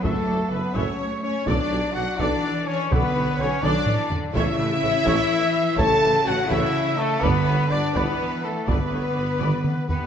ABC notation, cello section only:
X:1
M:6/8
L:1/16
Q:3/8=83
K:Amix
V:1 name="Cello section" clef=bass
F,6 A,6 | F,6 E,6 | D,6 F,2 E,2 D,2 | C,6 E,6 |
C,12 | D,6 E,6 | D,8- D, z B,2 |]